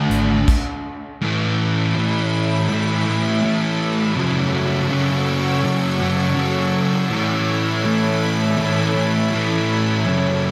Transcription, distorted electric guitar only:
Already playing: A3 D4
1.21 A2 E3 A3
1.95 A2 E3 A3
2.69 A2 E3 A3
3.06 E3 A3
3.42 A2 E3 A3
4.15 F#2 C#3 F#3
4.89 F#2 C#3 F#3
5.62 F#2 C#3 F#3
5.99 C#3 F#3
6.35 F#2 C#3 F#3
7.10 A2 E3 A3
7.83 A2 E3 A3
8.57 A2 E3 A3
8.94 E3 A3
9.31 A2 E3 A3
10.06 F#2 C#3 F#3

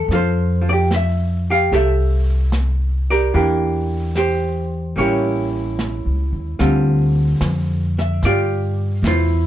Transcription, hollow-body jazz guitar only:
Already playing: G3 C#4 F4
0.12 F4 A4 C5
0.61 F3
0.69 G4 D5
0.94 E5
1.50 G4 F5
1.73 G4 A4 E5
3.10 G4 A#4 D5
3.34 E3 A#3 D4 G4
4.17 G4 C5
4.96 G3 A#3 C#4 E4 G4 C#5
6.59 D3 G3 C4 F4
7.99 E5
8.25 F4 G4 D5
9.06 E4 F4 C5

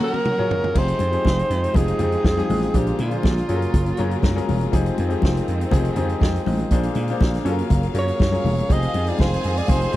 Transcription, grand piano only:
Already playing: F#3 C#4 F4 F#4 G#4 A#4
0.38 F#3 C#4 F4 G#4 C#5
0.74 F3 C4 D#4 G4 G#4
1.12 F3 C4 D#4 G4 G#4
1.73 F3 C4 D#4 G4 G#4
1.98 F3 C4 D#4 G4 G#4
2.37 F3 C4 D#4 G4 G#4
2.74 A#2 A#3 D4 G#4 C5
3.11 A#2 A#3 D4 G#4 C5
3.48 F#3 C#4 F4 G#4 A4
3.56 A#4
3.98 F#3 C#4 F4 G#4 A#4
4.35 F#3 C#4 F4 G#4 A#4
4.72 F3 C4 D#4 G4 G#4
5.09 F3 C4 D#4 G4 G#4
5.71 F3 C4 D#4 G4 G#4
5.95 F3 C4 D#4 G4 G#4
6.21 G4 D#5
6.46 D#4 C5
6.71 A#2 A#3 D4 G#4 C5
7.09 A#2 A#3 D4 G#4 C5
7.45 F#3 C#4 F4 G#4 A4
7.52 A#4
7.94 F#3 C#4 F4 G#4 A#4
8.32 F#3 C#4 F4 G#4 A#4
8.69 F3 C4 D#4 G4 G#4
9.07 F3 C4 D#4 F4 G#4
9.68 F3 C4 D#4 G4 G#4
9.91 F3 C4 D#4 G4 G#4

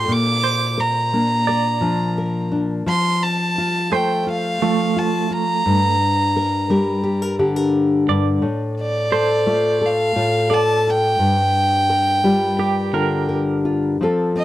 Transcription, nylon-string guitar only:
Already playing: F4
0.08 A#2
0.78 A#4
1.13 A#3 D4
1.49 A#4
1.81 F3 D4
2.18 A#4
2.52 D4
2.86 F3
3.58 F4
3.92 A3 F4
4.27 F4
4.62 F3 F4
4.96 F4
5.30 F4
5.66 G2
6.36 A#4
6.70 G3 A#4
7.04 G4
7.22 A#4
7.39 D3 G4
7.56 A#4
8.08 G2
8.42 A2
9.12 A4
9.46 A3 F4
9.81 A4
10.16 A2 F4
10.51 A4
10.87 F4
11.19 G2
11.90 A#4
12.24 G3 F4
12.59 A#4
12.93 D3 F4
13.29 A#4
13.65 F4
14.01 F3 C4 F4 A4
14.36 C4

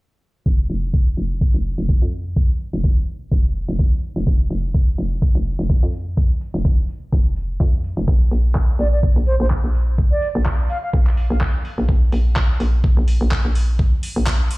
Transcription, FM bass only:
0.46 F1
0.70 F1
1.17 F1
1.54 F1
1.78 F1
2.02 F2
2.73 F1
3.32 F1
3.68 F1
4.16 F1
4.27 F1
4.51 F1
4.98 F1
5.35 F1
5.59 F1
5.83 F2
6.54 F1
7.12 F1
7.60 F2
7.97 F1
8.08 A#1
8.31 A#1
8.79 A#1
9.16 A#1
9.40 A#1
9.64 A#1
10.35 A#1
10.93 A#1
11.30 A#1
11.78 A#1
11.89 A#1
12.12 A#1
12.60 A#1
12.97 A#1
13.21 A#1
13.45 A#1
14.16 A#1

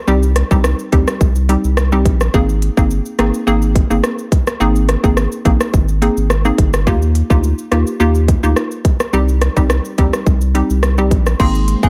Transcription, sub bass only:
0.08 C2
0.51 C2
0.93 D2
1.21 C2
1.64 C2
2.05 A#1
2.34 G#1
2.77 G1
3.19 G#1
3.47 G#1
3.91 G1
4.60 G#1
5.04 G#1
5.46 A#1
5.74 G#1
6.17 G#1
6.58 G1
6.87 D#2
7.30 D2
7.72 D#2
8.00 D#2
8.43 D2
9.13 C2
9.57 C2
9.98 D2
10.27 C2
10.70 C2
11.11 A#1
11.40 G#1
11.83 G1

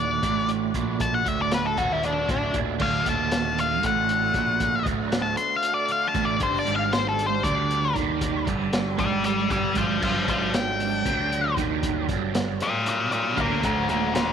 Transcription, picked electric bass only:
Already playing: D#1
0.23 A1
0.75 A#1
1.26 D1
1.77 D#1
2.29 D1
2.54 D#1
2.80 D1
3.06 D#1
3.83 A1
4.34 A#1
4.86 D1
6.15 A1
6.40 G1
6.68 G#1
7.43 D2
7.96 D#2
8.47 G1
8.99 G#1
9.50 G1
9.76 G#1
10.02 G1
10.29 G#1
11.05 D2
11.58 D#2
12.08 G1
13.38 D2
13.63 D1
13.88 D#1

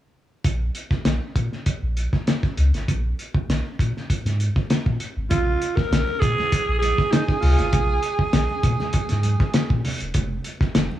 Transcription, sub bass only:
0.45 A#1
0.91 A#1
1.06 A#1
1.36 A#2
1.67 A#1
1.83 A#1
2.58 C#2
2.74 G#1
2.88 A#1
3.35 A#1
3.48 A#1
3.79 A#2
4.10 G#2
4.25 G#2
4.86 A#2
5.17 G#1
5.31 A#1
5.77 A#1
5.91 A#1
6.22 A#2
6.52 A#1
6.68 A#1
7.43 C#2
7.59 G#1
7.73 A#1
8.19 A#1
8.33 A#1
8.63 A#2
8.94 G#2
9.12 G#2
9.70 A#2
10.02 D#1
10.15 F1
10.61 F1
10.76 F1

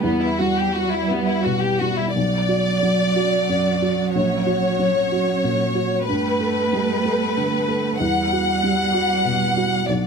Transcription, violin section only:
0.01 B3
0.21 E4
0.39 F#4
0.57 G4
0.74 F#4
0.91 E4
1.09 B3
1.26 E4
1.43 F#4
1.61 G4
1.80 F#4
1.98 E4
2.15 D5
4.15 C#5
6.08 B4
7.99 F#5
9.90 D5

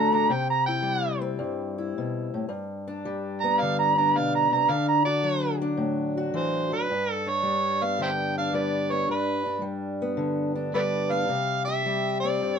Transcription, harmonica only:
Already playing: A#5
0.14 A#5
0.32 G5
0.50 A#5
0.66 G5
3.40 A#5
3.60 F5
3.79 A#5
3.98 A#5
4.17 F5
4.35 A#5
4.52 A#5
4.71 F5
4.88 A#5
5.05 D5
6.36 C5
6.73 B4
7.13 A4
7.29 C#5
7.83 F5
8.02 C5 E5 G5
8.38 F5
8.54 D5
8.92 C#5
9.11 B4
10.74 A4 B4 D5
11.12 F5
11.65 E5
12.20 D5

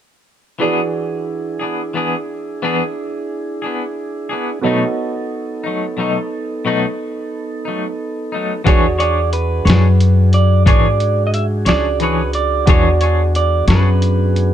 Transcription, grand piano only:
0.60 E3 F#4 G#4 B4 D5
4.61 B3 F#4 A4 C#5 D#5
8.65 F#4 G#4 D5 C#6
12.66 F#4 G#4 D5 C#6

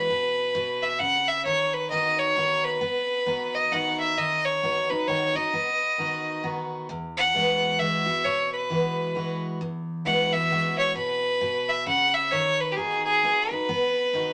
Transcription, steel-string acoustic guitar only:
0.10 B2
0.55 B2
1.00 C#3
1.45 D#3
1.91 D#3 B3 D#4 F#4
2.35 D#3 B3 D#4 F#4
2.81 B3
3.26 D#3 B3 D#4 F#4
3.71 D#3 B3 D#4 F#4
4.17 D#3
4.62 D#3 B3 D#4 F#4
4.90 D#4 F#4
5.08 D#3 B3 D#4 F#4
5.35 D#4 F#4
5.53 B3
5.98 D#3 B3 D#4 F#4
6.43 D#3 B3 D#4 F#4
6.89 E2
7.34 E3 G#3 B3 F#4
7.79 E3 G#3 B3 F#4
8.06 B3 F#4
8.25 B2
8.70 E3 G#3 B3 F#4
9.15 E3 G#3 B3 F#4
9.61 E2
10.05 E3 G#3 B3 F#4
10.33 B3 F#4
10.50 E3 G#3 B3 F#4
10.96 B2
11.41 B2
11.86 C#3
12.32 D#3
12.76 D#3 B3 D#4 F#4
13.23 D#3 B3 D#4 F#4
13.51 D#4 F#4
13.69 B3
14.13 D#3 B3 D#4 F#4

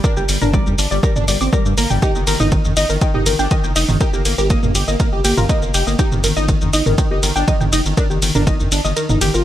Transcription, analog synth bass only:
0.17 G1
0.29 G1
0.42 G1
0.66 G2
0.78 G1
0.91 G1
1.16 G1
1.28 G1
1.41 G1
1.66 G2
1.78 G1
1.90 G1
2.15 G1
2.27 G1
2.40 G1
2.65 G2
2.77 G1
2.90 G1
3.14 G1
3.26 G1
3.39 G1
3.64 G1
3.76 F1
3.89 G1
4.13 G1
4.25 G1
4.38 G1
4.63 G2
4.75 G1
4.88 G1
5.13 G1
5.25 G1
5.37 G1
5.62 G1
5.74 F1
5.87 G1
6.12 G1
6.24 G1
6.37 G1
6.61 G2
6.73 G1
6.86 G1
7.11 G1
7.23 G1
7.36 G1
7.61 G1
7.72 F1
7.85 G1
8.10 G1
8.22 G1
8.35 G1
8.60 G2
8.72 G1
8.85 G1
9.09 G1
9.21 G1
9.34 G1

